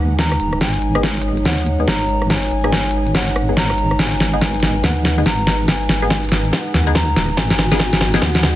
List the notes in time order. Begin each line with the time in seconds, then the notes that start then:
Already playing: D#2 G#3 D#4 B4 F#5
0.19 A#5, kick, snare, closed hi-hat
0.32 cross-stick
0.40 D#1, closed hi-hat
0.53 cross-stick
0.61 G#1 C#5 G#5, kick, snare, closed hi-hat
0.82 closed hi-hat
0.95 B3 D#4 G#4, cross-stick
1.03 kick, snare, closed hi-hat
1.16 closed hi-hat
1.22 closed hi-hat
1.37 closed hi-hat
1.45 D#2 F#5, kick, snare, closed hi-hat
1.67 closed hi-hat
1.80 B3 D#4 G#4
1.88 G#1 A#5, kick, snare, closed hi-hat
2.09 closed hi-hat
2.22 cross-stick
2.30 G#5 A#5, kick, snare, closed hi-hat
2.51 G#1, closed hi-hat
2.64 B3 D#4 G#4, cross-stick
2.72 kick, snare, closed hi-hat
2.85 closed hi-hat
2.91 closed hi-hat
3.07 closed hi-hat
3.15 G#1 F#5, kick, snare, closed hi-hat
3.36 cross-stick, closed hi-hat
3.49 B3 D#4 G#4
3.57 A#5, kick, snare, closed hi-hat
3.70 cross-stick
3.78 closed hi-hat
3.91 cross-stick
3.99 G#1 B4 G#5, kick, snare, closed hi-hat
4.20 snare, closed hi-hat
4.33 B3 D#4 G#4
4.41 kick, snare, closed hi-hat
4.54 closed hi-hat
4.60 snare, closed hi-hat
4.76 closed hi-hat
4.84 D#2 F#5, kick, snare, closed hi-hat
5.05 snare, closed hi-hat
5.18 B3 D#4 G#4
5.26 G#1 A#5, kick, snare, closed hi-hat
5.47 snare, closed hi-hat
5.68 G#5, kick, snare, closed hi-hat
5.89 G#1, snare, closed hi-hat
6.02 B3 D#4 G#4
6.10 kick, snare, closed hi-hat
6.23 closed hi-hat
6.29 snare, closed hi-hat
6.45 closed hi-hat
6.53 G#5, kick, snare, closed hi-hat
6.58 F#5
6.74 D#2, snare, closed hi-hat
6.87 B3 D#4 G#4
6.95 A#5, kick, snare, closed hi-hat
7.16 D#1, snare, closed hi-hat
7.37 G#1 F#4 G#5, kick, snare, closed hi-hat
7.50 snare
7.59 snare, closed hi-hat
7.71 B3 D#4 G#4, snare
7.79 kick, snare, closed hi-hat
7.93 snare, closed hi-hat
7.98 snare, closed hi-hat
8.14 B3 D#4 G#4, snare, closed hi-hat
8.22 D#2 F#5 G#5, kick, snare, closed hi-hat
8.35 snare
8.43 snare, closed hi-hat